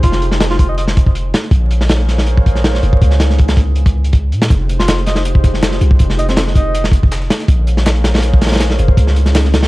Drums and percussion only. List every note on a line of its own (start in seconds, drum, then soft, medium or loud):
0.03 kick loud
0.03 closed hi-hat medium
0.12 snare soft
0.22 closed hi-hat medium
0.32 snare medium
0.40 snare loud
0.40 closed hi-hat medium
0.51 snare soft
0.59 kick medium
0.59 closed hi-hat medium
0.78 closed hi-hat medium
0.87 snare medium
0.97 kick loud
0.97 closed hi-hat medium
1.06 kick loud
1.15 closed hi-hat medium
1.34 snare loud
1.34 closed hi-hat medium
1.44 closed hi-hat soft
1.51 kick loud
1.51 closed hi-hat medium
1.71 closed hi-hat medium
1.81 snare medium
1.89 snare loud
1.89 closed hi-hat medium
2.00 closed hi-hat soft
2.09 snare soft
2.09 closed hi-hat medium
2.18 snare medium
2.27 closed hi-hat medium
2.37 kick medium
2.46 kick medium
2.46 closed hi-hat medium
2.55 snare soft
2.64 snare loud
2.64 closed hi-hat medium
2.75 snare medium
2.83 closed hi-hat medium
2.93 kick loud
3.02 kick loud
3.02 closed hi-hat medium
3.11 snare soft
3.20 snare loud
3.20 closed hi-hat medium
3.30 snare soft
3.38 kick loud
3.38 closed hi-hat medium
3.48 snare loud
3.48 closed hi-hat medium
3.57 kick loud
3.57 closed hi-hat medium
3.76 closed hi-hat medium
3.86 kick loud
3.86 closed hi-hat medium
4.04 closed hi-hat medium
4.13 kick medium
4.13 closed hi-hat medium
4.32 closed hi-hat medium
4.42 snare loud
4.42 closed hi-hat medium
4.50 kick loud
4.50 closed hi-hat medium
4.69 closed hi-hat medium
4.80 snare medium
4.88 snare loud
4.88 closed hi-hat medium
4.98 closed hi-hat soft
5.06 snare soft
5.06 closed hi-hat medium
5.15 snare medium
5.25 closed hi-hat medium
5.35 kick medium
5.44 kick loud
5.44 snare soft
5.44 closed hi-hat medium
5.54 snare soft
5.63 snare loud
5.63 closed hi-hat medium
5.72 snare medium
5.81 closed hi-hat medium
5.91 kick loud
5.99 kick loud
5.99 closed hi-hat medium
6.10 snare medium
6.19 closed hi-hat medium
6.29 snare soft
6.29 closed hi-hat soft
6.36 snare loud
6.36 closed hi-hat medium
6.36 open hi-hat medium
6.47 snare soft
6.55 kick loud
6.55 closed hi-hat medium
6.74 closed hi-hat medium
6.84 snare medium
6.92 kick medium
6.92 closed hi-hat medium
7.03 kick loud
7.12 snare loud
7.12 closed hi-hat medium
7.22 snare soft
7.30 snare loud
7.30 closed hi-hat medium
7.39 snare medium
7.39 closed hi-hat soft
7.48 kick loud
7.48 closed hi-hat medium
7.67 closed hi-hat medium
7.77 snare medium
7.86 snare loud
7.86 closed hi-hat medium
7.96 closed hi-hat soft
8.04 snare loud
8.04 closed hi-hat medium
8.14 snare medium
8.14 closed hi-hat medium
8.18 snare loud
8.18 closed hi-hat medium
8.22 closed hi-hat medium
8.33 kick loud
8.41 snare medium
8.41 snare soft
8.41 closed hi-hat medium
8.46 snare medium
8.46 closed hi-hat medium
8.51 snare medium
8.51 closed hi-hat medium
8.56 snare loud
8.56 closed hi-hat medium
8.60 snare loud
8.60 closed hi-hat medium
8.70 snare medium
8.79 closed hi-hat medium
8.88 kick medium
8.97 kick loud
8.97 closed hi-hat medium
9.07 snare medium
9.16 closed hi-hat medium
9.26 snare soft
9.26 closed hi-hat soft
9.35 snare loud
9.35 closed hi-hat medium
9.35 open hi-hat medium
9.45 snare soft
9.54 snare loud
9.54 closed hi-hat medium
9.63 snare medium
9.63 closed hi-hat medium